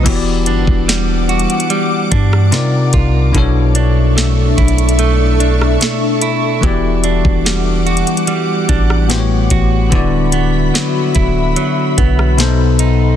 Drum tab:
CC |x-------------------------------|--------------------------------|--------------------------------|--------------------------------|
HH |x---x---x---xxxxx---x---x---x---|x---x---x---xxxxx---x---x---x---|x---x---x---xxxxx---x---x---x---|x---x---x---x---x---x---x---x---|
SD |--------o-------------r-o-------|--------o-------------r-o-------|--------o-------------r-o-------|--------o-------------r-o-------|
BD |o-----o-------------o-------o---|o-----------o-------------------|o-----o-------------o-------o---|o-----------o-------o-----------|